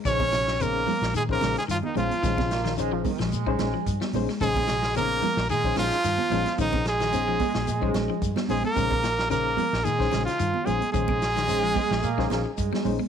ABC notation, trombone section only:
X:1
M:4/4
L:1/16
Q:"Swing 16ths" 1/4=110
K:Bbdor
V:1 name="Trombone section" clef=bass
z16 | z2 B,2 A, F, E, A,8 z | z16 | z6 A,2 A,4- A, z3 |
z16 | z4 A,4 B,2 B,2 A,3 z |]